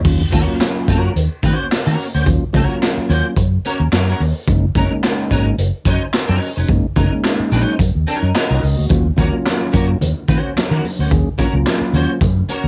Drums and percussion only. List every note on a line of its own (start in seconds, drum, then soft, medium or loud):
0.05 kick loud
0.05 crash medium
0.32 kick loud
0.32 closed hi-hat medium
0.60 snare loud
0.60 clap medium
0.60 closed hi-hat medium
0.88 kick medium
0.88 closed hi-hat medium
1.16 closed hi-hat medium
1.43 kick medium
1.43 closed hi-hat medium
1.71 snare loud
1.71 clap loud
1.71 closed hi-hat loud
1.99 open hi-hat medium
2.26 kick loud
2.26 closed hi-hat medium
2.54 kick loud
2.54 closed hi-hat medium
2.82 snare loud
2.82 clap medium
2.82 closed hi-hat medium
3.10 closed hi-hat medium
3.37 kick medium
3.37 closed hi-hat loud
3.65 closed hi-hat medium
3.92 snare loud
3.92 clap loud
3.92 closed hi-hat loud
4.20 open hi-hat medium
4.47 kick loud
4.47 closed hi-hat loud
4.75 kick loud
4.75 closed hi-hat medium
5.03 snare medium
5.03 clap medium
5.03 closed hi-hat medium
5.31 kick medium
5.31 closed hi-hat medium
5.58 closed hi-hat medium
5.85 kick medium
5.85 closed hi-hat medium
6.13 snare loud
6.13 clap loud
6.13 closed hi-hat loud
6.41 open hi-hat medium
6.69 kick loud
6.69 closed hi-hat medium
6.96 kick loud
6.96 closed hi-hat medium
7.24 snare loud
7.24 clap medium
7.24 closed hi-hat medium
7.52 closed hi-hat medium
7.79 kick medium
7.79 closed hi-hat loud
8.07 closed hi-hat medium
8.34 snare loud
8.34 clap loud
8.34 closed hi-hat loud
8.63 open hi-hat medium
8.89 kick loud
8.89 closed hi-hat medium
8.89 muted conga medium
9.17 kick loud
9.17 closed hi-hat medium
9.17 muted conga medium
9.46 snare loud
9.46 clap medium
9.46 closed hi-hat medium
9.46 high conga medium
9.74 kick medium
9.74 closed hi-hat medium
10.01 closed hi-hat medium
10.01 muted conga medium
10.01 low conga medium
10.28 kick medium
10.28 closed hi-hat medium
10.56 snare loud
10.56 clap loud
10.56 closed hi-hat loud
10.56 high conga medium
10.84 open hi-hat medium
10.84 high conga medium
11.10 kick loud
11.10 closed hi-hat medium
11.10 muted conga medium
11.38 kick loud
11.38 closed hi-hat medium
11.38 muted conga medium
11.66 snare loud
11.66 clap medium
11.66 closed hi-hat medium
11.66 high conga medium
11.93 closed hi-hat medium
11.93 low conga medium
12.21 kick loud
12.21 closed hi-hat medium
12.21 muted conga medium
12.21 low conga loud
12.49 closed hi-hat medium
12.49 muted conga soft